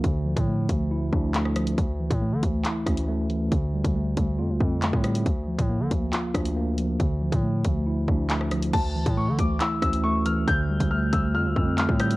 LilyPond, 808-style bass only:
\new Staff \with { instrumentName = "808-style bass" } { \clef bass \time 4/4 \key d \minor \tempo 4 = 138 d,8. a,8. d,4 d,4. | d,8. a,8 d16 d,8 r8 d,4. | d,8. d,8. d,8 f,16 d,16 f,8. a,8. | d,8. a,8 d16 d,8 r8 d,4. |
d,8. a,8. d,4 d,4. | d,8. a,8 d16 d,8 r8 d,4. | d,8. d,8. d,8 f,16 d,16 f,8. a,8. | }